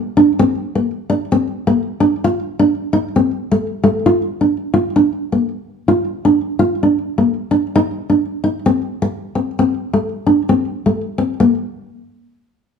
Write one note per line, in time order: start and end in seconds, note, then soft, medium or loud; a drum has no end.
0.17 0.32 D4 medium
0.39 0.54 C4 loud
0.75 0.90 A#3 medium
1.10 1.24 D4 medium
1.32 1.47 C4 medium
1.67 1.82 A#3 medium
2.00 2.15 D4 medium
2.24 2.39 F4 medium
2.59 2.74 D4 medium
2.93 3.08 D#4 medium
3.16 3.31 C4 medium
3.52 3.66 A3 medium
3.84 3.99 A3 medium
4.06 4.21 F4 medium
4.41 4.56 D4 medium
4.74 4.89 F4 medium
4.96 5.12 D4 medium
5.32 5.48 A#3 medium
5.88 6.04 F4 medium
6.25 6.40 D4 medium
6.59 6.74 F4 medium
6.83 6.98 D4 medium
7.18 7.33 A#3 medium
7.51 7.66 D4 medium
7.76 7.90 D#4 loud
8.10 8.25 D4 medium
8.44 8.59 D#4 medium
8.66 8.81 C4 medium
9.02 muted nylon-string guitar stroke medium
9.35 9.50 C4 medium
9.59 9.74 C4 medium
9.93 10.08 A3 medium
10.27 10.42 D4 medium
10.49 10.64 C4 medium
10.86 11.01 A3 medium
11.18 11.33 C4 medium
11.40 11.54 A#3 medium